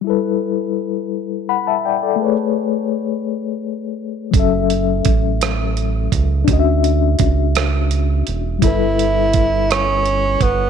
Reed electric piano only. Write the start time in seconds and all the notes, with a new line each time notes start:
0.01 G3 E4
0.07 A4 B4
1.49 F#5 B5
1.67 E5 A5
1.85 D5 G5
2.03 A4 D5
2.16 A3 G#4
2.22 B4 C#5
4.31 F#3 C#4
4.37 A4 E5
6.44 C#4 D4
6.50 F#4 D#5
6.60 E5
8.59 G3 E4
8.65 A4 B4